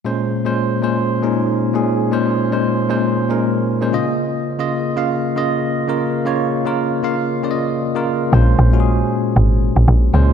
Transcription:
X:1
M:4/4
L:1/16
Q:"Swing 16ths" 1/4=116
K:Bbm
V:1 name="Tine electric piano"
[B,,A,Dc]2 z [B,,A,Dc]2 z [B,,A,Dc]2 z [B,,A,DE]3 z [B,,A,DA]2 z | [B,,A,Dc]2 z [B,,A,Dc]2 z [B,,A,Dc]2 z [B,,A,DB]3 z [B,,A,Dc] [D,B,Fe]2- | [D,B,Fe]2 z [D,B,Fe]2 z [D,B,Ff]2 z [D,B,Fe]3 z [D,B,FB]2 z | [D,B,Fd]2 z [D,B,FB]2 z [D,B,Ff]2 z [D,B,F=de]3 z [_D,B,FB]2 z |
[B,,A,Dc]2 z [B,,A,DGA]6 z4 z [B,,A,Dc]2 |]
V:2 name="Log drum bass" clef=bass
z16 | z16 | z16 | z16 |
B,,,2 B,,,4 z2 A,,,3 B,,, B,,,2 D,,2 |]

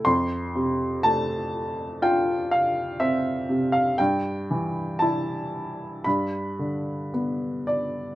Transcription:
X:1
M:4/4
L:1/16
Q:1/4=59
K:Flyd
V:1 name="Upright piano"
c'4 a4 g2 f2 e3 f | g4 a4 b4 z2 d2 |]
V:2 name="Upright piano" clef=bass
F,,2 C,2 A,4 F4 C2 C,2 | G,,2 E,2 E4 G,,2 D,2 B,4 |]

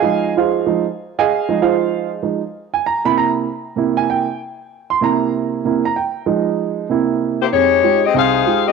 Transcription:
X:1
M:4/4
L:1/8
Q:"Swing" 1/4=192
K:Fm
V:1 name="Saxophone section"
z8 | z8 | z8 | z8 |
z8 | z6 z [B,=EGc] | [A,EGd]3 [CGAe] [EAcf]3 [CGAe] |]
V:2 name="Grand piano"
[Aefa]2 [FAcf]3 z2 [Aefa]- | [Aefa]2 [FAcf]3 z3 | z a b =b _b z3 | z a g2 z3 c' |
b2 z3 b g2 | z8 | z8 |]
V:3 name="Grand piano"
[F,A,E]4 [F,A,E] z3 | z [F,A,E]4- [F,A,E] [F,A,E] z | z3 [C,B,=E]3 z2 | [C,B,=E]3 z4 z |
[C,B,=E]4 [C,B,E] z3 | [F,A,E]4 [C,B,=E]4 | F,,2 [A,EFG] z C,,2 [A,EFG] z |]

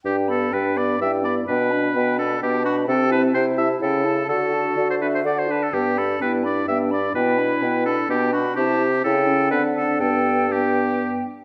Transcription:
X:1
M:3/4
L:1/16
Q:1/4=126
K:G
V:1 name="Flute"
g2 b2 g2 b2 g2 b2 | g2 b2 g2 b2 g2 b2 | g2 a2 g2 a2 g2 a2 | f2 a2 d2 e2 f2 a2 |
g2 b2 g2 b2 g2 b2 | g2 b2 g2 b2 g2 b2 | a4 g4 f4 | g4 g6 z2 |]
V:2 name="Oboe"
G2 A2 B2 d2 e2 d2 | B6 A2 G2 F2 | A2 B2 c2 e2 A4 | A4- A c B c d c B A |
G2 A2 B2 d2 e2 d2 | B6 A2 G2 F2 | G4 A4 B2 A2 | A4 G6 z2 |]
V:3 name="Clarinet"
z4 D4 E4 | D12 | C4 E8 | F8- F2 z2 |
z4 E4 D4 | E8 D4 | C4 E4 D4 | D8- D2 z2 |]
V:4 name="French horn"
D2 B,2 D2 B,2 D2 B,2 | B,2 D2 B,2 D2 B,2 D2 | G2 E2 G2 E2 ^C2 E2 | F2 D2 F2 D2 F2 D2 |
B,2 D2 B,2 D2 B,2 D2 | B,2 D2 B,2 D2 B,2 D2 | E4 E2 ^C2 =C4 | B,4 B,6 z2 |]
V:5 name="Bassoon" clef=bass
G,,4 G,,4 G,,4 | B,,4 B,,4 B,,4 | C,4 C,4 ^C,4 | D,4 D,4 D,4 |
G,,4 G,,4 G,,4 | B,,4 B,,4 B,,4 | C,4 ^C,4 D,4 | G,,8- G,,2 z2 |]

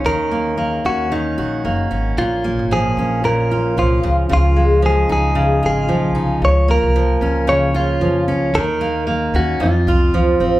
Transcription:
X:1
M:4/4
L:1/16
Q:"Swing 16ths" 1/4=113
K:Bbm
V:1 name="Clean electric guitar"
B6 G2 E6 z2 | F4 A4 B4 F3 z | F4 A2 A4 A6 | d2 B6 d2 F4 z2 |
B6 G2 F6 z2 |]
V:2 name="Steel-string acoustic guitar"
E,2 B,2 B,2 D2 E,2 G2 B,2 D2 | B,,2 B,2 F,2 D2 B,,2 F2 F,2 D,2 | D,2 A,2 F,2 E2 D,2 F2 F,2 E2 | z2 B,2 F,2 D2 D,2 F2 F,2 D2 |
E,2 B,2 B,2 D2 F,,2 F2 F,2 C2 |]
V:3 name="Upright bass" clef=bass
E,,6 E,,4 B,,,2 G,,,2 A,,,2 | B,,,3 A,,,3 B,,,6 C,,2 D,,2 | D,,6 D,,4 A,,,2 B,,,2 C,,2 | D,,3 C,,3 D,,6 F,,2 D,,2 |
E,,6 E,,2 F,,2 C,,2 D,,2 =A,,,2 |]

